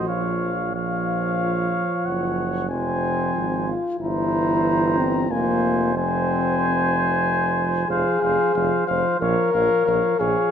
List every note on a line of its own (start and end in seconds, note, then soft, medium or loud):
0.00 0.10 A1 soft
0.00 0.11 F#4 medium
0.07 1.89 A#1 soft
0.07 0.73 F3 soft
0.07 0.57 F4 medium
0.07 0.74 C#5 soft
0.07 0.74 F5 soft
0.74 2.67 F3 soft
0.74 2.35 F4 medium
0.74 2.67 C#5 soft
0.74 2.07 F5 soft
2.06 2.72 F#1 soft
2.06 2.70 F#5 soft
2.70 3.35 F1 soft
2.70 3.71 F3 soft
2.70 3.64 C4 medium
2.70 3.72 C5 soft
2.70 3.71 G#5 soft
3.36 3.77 G#1 soft
3.68 4.00 F4 medium
4.00 5.27 G1 medium
4.00 5.27 E3 medium
4.00 4.99 E4 medium
4.00 5.27 C5 medium
4.00 5.33 A#5 medium
4.98 5.30 C4 medium
5.30 7.85 F1 medium
5.30 5.94 F3 medium
5.30 5.94 A#3 medium
5.30 5.95 C5 medium
5.30 5.96 G#5 soft
5.95 7.85 F3 medium
5.95 7.53 C4 medium
5.95 7.86 C5 medium
5.95 7.86 G#5 medium
7.88 8.04 F1 medium
7.88 8.21 F3 medium
7.88 8.84 G#4 medium
7.88 8.22 C5 medium
7.88 8.22 F5 medium
8.21 8.37 F1 medium
8.21 8.53 F3 soft
8.21 8.56 C5 soft
8.21 8.55 F5 medium
8.54 8.70 F1 medium
8.54 8.86 F3 medium
8.54 8.88 C5 soft
8.54 8.87 F5 medium
8.87 9.03 F1 medium
8.87 9.19 F3 medium
8.87 9.20 C5 medium
8.87 9.20 C5 soft
8.87 9.19 F5 medium
9.19 9.36 A#1 medium
9.19 9.52 F3 medium
9.19 10.21 A#4 medium
9.19 9.53 C#5 medium
9.19 9.52 F5 medium
9.53 9.69 A#1 medium
9.53 9.86 F3 medium
9.53 9.87 C#5 soft
9.53 9.85 F5 medium
9.86 10.02 A#1 medium
9.86 10.18 F3 medium
9.86 10.19 C#5 medium
9.86 10.18 F5 medium
10.19 10.35 A#1 medium
10.19 10.51 F3 soft
10.19 10.51 G#4 medium
10.19 10.51 C#5 medium
10.19 10.51 F5 soft